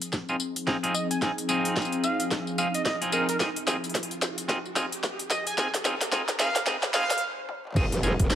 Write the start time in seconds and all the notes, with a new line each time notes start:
Already playing: F3 C4 D#4 G#4, riser
0.02 closed hi-hat, tambourine
0.13 kick, snare, tambourine
0.29 C4 D#4 F4 G#4, tambourine
0.40 tambourine
0.56 closed hi-hat, tambourine
0.67 C4 D#4 F4 G#4, kick, snare
0.83 C4 D#4 F4 G#4, closed hi-hat, tambourine
0.94 D#5, tambourine
1.11 G#5, closed hi-hat, tambourine
1.22 C4 D#4 F4 G#4 G#5, kick, snare, tambourine
1.38 closed hi-hat, tambourine
1.49 C4 D#4 F4 G#4, tambourine
1.65 closed hi-hat, tambourine
1.76 kick, snare, tambourine
1.82 tambourine
1.85 tambourine
1.92 closed hi-hat, tambourine
2.04 F5, tambourine
2.20 closed hi-hat, tambourine
2.31 kick, snare, tambourine
2.47 tambourine
2.58 C4 D#4 F4 G#4 F5, tambourine
2.74 D#5, closed hi-hat, tambourine
2.85 D#5, kick, snare, tambourine
3.01 C4 D#4 F4 G#4, closed hi-hat, tambourine
3.12 C4 D#4 F4 G#4 A#4, tambourine
3.29 A#4, closed hi-hat, tambourine
3.40 C4 D#4 F4 G#4, kick, snare, tambourine
3.56 closed hi-hat, tambourine
3.67 C4 D#4 F4 G#4, snare, tambourine
3.84 closed hi-hat, tambourine
3.89 closed hi-hat
3.94 kick, snare, closed hi-hat, tambourine
4.03 closed hi-hat
4.11 closed hi-hat, tambourine
4.22 snare, tambourine
4.38 closed hi-hat, tambourine
4.48 C4 D#4 F4 G#4, kick, snare, tambourine
4.65 tambourine
4.76 C4 D#4 F4 G#4, snare, tambourine
4.92 closed hi-hat, tambourine
5.03 kick, snare, tambourine
5.19 closed hi-hat, tambourine
5.30 D#5, snare, tambourine
5.47 G#5, closed hi-hat, tambourine
5.57 C4 D#4 F4 G#4 G#5, kick, snare, tambourine
5.74 snare, closed hi-hat, tambourine
5.85 C4 D#4 F4 G#4, snare, tambourine
6.01 snare, closed hi-hat, tambourine
6.12 C4 D#4 F4 G#4, kick, snare, tambourine
6.28 snare, closed hi-hat, tambourine
6.39 C4 D#4 F4 G#4 F5, snare, tambourine
6.56 snare, closed hi-hat, tambourine
6.66 C4 D#4 F4 G#4, kick, snare, tambourine
6.83 snare, tambourine
6.94 C4 D#4 F4 G#4 F5, snare, tambourine
7.10 snare, closed hi-hat, tambourine
7.12 closed hi-hat
7.18 closed hi-hat
7.49 high tom
7.65 mid tom
7.67 mid tom
7.70 mid tom
7.72 mid tom
7.74 F1 D#3 G#3 C4 D#4 F4 G#4, kick, mid tom, crash, tambourine, impact
7.92 closed hi-hat, tambourine
8.03 C4 D#4 F4 G#4, tambourine
8.20 D#1, kick, closed hi-hat, tambourine
8.30 G#1, snare, tambourine